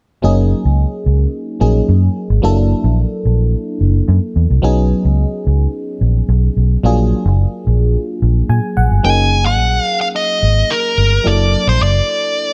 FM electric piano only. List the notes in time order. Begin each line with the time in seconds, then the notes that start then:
0.22 F#3 A#3 C#4 D#4 G#4
1.60 F#3 A#3 C#4 D#4 G#4
2.42 F#3 A#3 D4 E4 A4
4.62 F#3 B3 C#4 D#4 G#4
6.83 F#3 A#3 D4 F4 G#4
8.50 G#5
8.77 F#5
9.03 F#3 A#3 C#4 D#4 G#4
11.24 F#3 A#3 D4 E4 A4